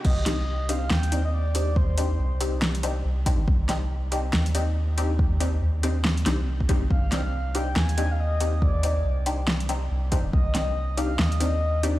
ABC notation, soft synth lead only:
X:1
M:4/4
L:1/16
Q:"Swing 16ths" 1/4=140
K:Cm
V:1 name="Soft synth lead"
e6 f2 g3 e d4 | c8 z8 | z16 | z16 |
f6 g2 a3 f e4 | d8 z8 | e6 f2 e6 d2 |]